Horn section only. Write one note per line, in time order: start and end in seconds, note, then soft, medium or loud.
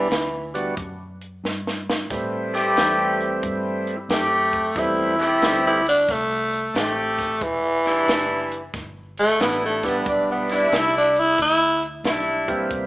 2.53 3.29 A3 medium
2.53 3.30 C4 medium
2.53 3.30 G4 loud
4.09 4.71 A3 medium
4.09 4.71 C4 medium
4.09 4.72 G4 medium
5.19 5.95 A3 medium
5.19 5.95 C4 medium
5.19 5.95 G4 medium
6.74 7.36 A3 medium
6.74 7.37 C4 medium
6.74 7.37 G4 medium
7.84 8.60 G3 medium
7.84 8.60 D4 medium
7.84 8.61 E4 medium
9.39 10.01 G3 medium
9.39 10.02 D4 medium
9.39 10.02 E4 medium
10.49 11.25 G3 medium
10.49 11.25 D4 medium
10.49 11.26 E4 medium
12.04 12.66 G3 medium
12.04 12.66 D4 medium
12.04 12.67 E4 medium